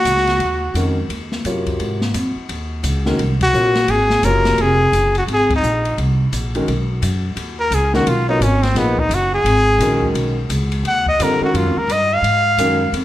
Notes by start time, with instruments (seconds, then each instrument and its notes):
Already playing: trumpet F#4
0.05 upright bass C#2, hi-hat pedal, ride
0.17 snare
0.27 snare, ride
0.39 upright bass D#2, ride
0.74 upright bass F2, grand piano D#3 G#3 C#4 F#4 A#4, hi-hat pedal, ride
1.09 upright bass D#2, ride
1.32 snare
1.44 upright bass F#2, grand piano C3 F#3 F4 A#4 C#5, hi-hat pedal, ride
1.66 kick, ride
1.80 upright bass G#2, ride
2.01 snare
2.14 upright bass F2, hi-hat pedal, ride
2.36 muted upright bass stroke
2.49 upright bass D#2, ride
2.83 upright bass C#2, hi-hat pedal, ride
3.06 grand piano D#3 G#3 C#4 F#4 A#4, snare
3.18 upright bass C2, ride
3.41 trumpet F#4, kick, ride
3.53 upright bass A#1, grand piano F#3 C4 F4 A#4 C#5, hi-hat pedal
3.75 snare, ride
3.88 upright bass G#1, trumpet G#4, ride
4.10 snare
4.23 upright bass F#1, grand piano C3 F#3 F4 A#4 C#5, trumpet A#4, hi-hat pedal, ride
4.45 snare, ride
4.58 upright bass F1, trumpet G#4, ride
4.92 upright bass F#1, hi-hat pedal, ride
5.15 trumpet F#4, ride
5.27 upright bass G#1, ride
5.33 trumpet G#4
5.50 kick, ride
5.55 trumpet D#4
5.63 upright bass A#1, hi-hat pedal
5.85 ride
5.98 upright bass C2, ride
6.32 upright bass A#1, hi-hat pedal, ride
6.55 grand piano D#3 G#3 C#4 F#4 A#4, ride
6.67 upright bass B1, ride
7.02 upright bass F#2, hi-hat pedal, ride
7.36 upright bass D#2, ride
7.60 trumpet A#4
7.71 upright bass C#2, trumpet G#4, hi-hat pedal, ride
7.94 grand piano D#3 G#3 C#4 F#4 A#4, trumpet F#4, snare
8.06 upright bass B1, trumpet F4, ride
8.29 grand piano F#3 B3 F4 A#4 C#5, trumpet D#4
8.40 upright bass G#1, trumpet C#4, hi-hat pedal, ride
8.62 trumpet C4, snare, ride
8.75 upright bass A#1, grand piano F3 A#3 D#4 G#4 B4, trumpet B3, snare, ride
8.98 trumpet D#4, kick
9.09 upright bass F#1, hi-hat pedal, ride
9.14 trumpet F#4
9.34 trumpet G#4
9.44 upright bass G#1, ride
9.78 upright bass A#1, grand piano D#3 G#3 C#4 F#4 A#4, hi-hat pedal, ride
10.02 kick
10.14 upright bass B1, ride
10.49 upright bass C#2, hi-hat pedal, ride
10.72 ride
10.83 upright bass D#2, ride
10.87 trumpet F#5
11.06 trumpet D#5, kick
11.19 upright bass F2, grand piano D3 G3 C4 F4 A4, hi-hat pedal, ride
11.23 trumpet A#4
11.41 grand piano D#3 G#3 C#4 F#4 A#4, trumpet F#4, muted upright bass stroke
11.54 upright bass F#2, trumpet F4, ride
11.65 upright bass F2
11.76 upright bass D#2, trumpet A#4
11.87 upright bass G2, hi-hat pedal, ride
11.92 trumpet D#5
12.13 trumpet F5
12.22 upright bass G#2, ride
12.57 upright bass F#2, grand piano D#3 G#3 C#4 F#4 A#4, hi-hat pedal, ride
12.92 upright bass F2, ride